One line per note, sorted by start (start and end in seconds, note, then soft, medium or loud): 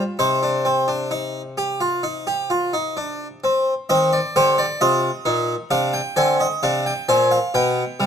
0.00 0.17 F4 medium
0.19 3.39 C3 medium
0.19 0.42 D#4 medium
0.19 3.39 C5 medium
0.43 0.65 D4 medium
0.65 0.88 C4 medium
0.88 1.11 D4 soft
1.11 1.40 D#4 medium
1.58 1.80 G4 medium
1.81 2.03 F4 medium
2.03 2.26 D#4 medium
2.27 2.50 G4 medium
2.50 2.73 F4 medium
2.73 2.96 D#4 medium
2.97 3.26 D4 medium
3.44 3.72 C4 medium
3.89 4.18 D#3 medium
3.89 4.18 C4 medium
3.89 4.12 D#5 medium
4.13 4.35 D5 medium
4.36 4.64 D3 medium
4.36 4.64 G4 medium
4.36 4.58 C5 medium
4.58 4.80 D5 medium
4.81 5.09 C3 medium
4.81 5.09 F4 medium
4.81 5.68 D#5 medium
5.25 5.54 A#2 medium
5.25 5.53 D#4 medium
5.71 5.99 C3 medium
5.71 5.99 D4 medium
5.71 5.93 F5 medium
5.94 6.16 G5 medium
6.16 6.45 D3 medium
6.16 6.45 C4 medium
6.16 6.39 G#5 medium
6.40 6.62 D#5 medium
6.63 6.91 C3 medium
6.63 6.91 D4 medium
6.63 6.84 F5 medium
6.86 7.07 G5 medium
7.09 7.37 A#2 medium
7.09 7.36 C4 medium
7.09 7.30 G#5 medium
7.31 7.53 F5 medium
7.54 7.82 B2 medium
7.54 7.82 B3 medium
7.54 8.06 G5 medium
8.00 8.06 C3 medium
8.00 8.06 G3 medium